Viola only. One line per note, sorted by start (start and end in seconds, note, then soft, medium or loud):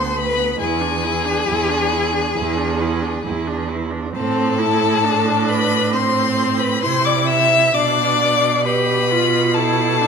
0.00 0.16 B3 medium
0.15 0.39 A3 medium
0.37 0.59 B3 medium
0.59 0.83 E4 medium
0.81 1.05 D4 medium
1.04 1.27 E4 medium
1.25 1.47 D4 medium
1.47 1.71 E4 medium
1.70 1.93 D4 medium
1.92 2.15 E4 medium
2.13 2.35 D4 medium
2.36 2.59 E4 medium
2.58 2.82 D4 medium
2.81 3.04 E4 medium
3.02 3.24 D4 medium
3.25 3.49 E4 medium
3.47 3.71 D4 medium
3.69 3.92 E4 medium
3.91 4.13 D4 medium
4.14 4.61 C4 medium
4.59 5.06 E4 medium
5.04 5.95 D4 medium
5.94 6.84 C4 medium
6.83 7.74 E4 medium
7.76 8.64 D4 medium
8.65 9.13 G4 medium
9.12 9.57 F4 medium
9.56 10.04 E4 medium
10.02 10.07 D4 medium